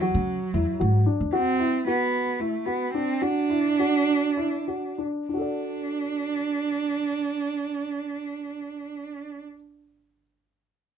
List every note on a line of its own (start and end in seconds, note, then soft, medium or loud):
0.00 1.06 F#3 medium
0.00 0.48 F#4 medium
0.14 0.36 C#3 medium
0.54 0.65 E2 medium
0.54 0.77 E4 medium
0.80 1.03 G#2 medium
0.80 1.03 F#4 medium
1.06 1.30 D4 medium
1.20 1.31 E2 medium
1.33 1.82 C4 medium
1.33 1.56 F#4 medium
1.59 1.83 E4 medium
1.87 2.42 B3 medium
1.87 2.33 F#4 medium
2.40 2.67 A3 medium
2.40 2.63 E4 medium
2.66 2.93 B3 medium
2.66 2.90 F#4 soft
2.93 3.23 C4 medium
2.93 3.19 D4 medium
3.21 4.98 D4 medium
3.21 3.46 F#4 medium
3.50 3.75 E4 medium
3.79 4.30 F#4 medium
4.37 4.63 E4 soft
4.68 4.94 F#4 soft
4.98 5.26 D4 soft
5.28 9.42 D4 medium
5.28 9.43 D4 soft
5.34 9.48 F#4 soft
5.34 9.51 A4 soft
5.41 9.55 D5 soft